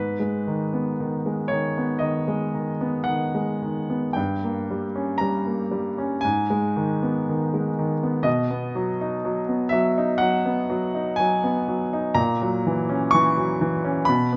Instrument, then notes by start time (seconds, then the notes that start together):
grand piano
Already playing: G#2 B4
0.20 G#3
0.47 D#3
0.74 B3
1.00 D#3
1.26 G#3
1.48 D#3 C#5
1.78 B3
1.99 D#3 D#5
2.28 G#3
2.54 D#3
2.81 B3
3.04 D#3 F#5
3.35 G#3
3.62 D#3
3.90 B3
4.13 G2 G5
4.43 A#3
4.71 G3
4.96 C#4
5.18 G3 A#5
5.47 A#3
5.71 G3
5.98 C#4
6.21 G#2 G#5
6.50 G#3
6.76 D#3
7.03 B3
7.29 D#3
7.54 G#3
7.79 D#3
8.03 B3
8.23 B2 D#5
8.51 B3
8.75 F#3
9.01 D#4
9.25 F#3
9.48 B3
9.69 F#3 E5
9.98 D#4
10.18 F#3 F#5
10.46 B3
10.70 F#3
10.95 D#4
11.16 F#3 G#5
11.44 B3
11.68 F#3
11.93 D#4
12.14 A#2 A#5
12.42 F#3
12.67 E3
12.89 C#4
13.11 E3 C#6
13.37 F#3
13.61 E3
13.84 C#4
14.05 B2 B5
14.33 B3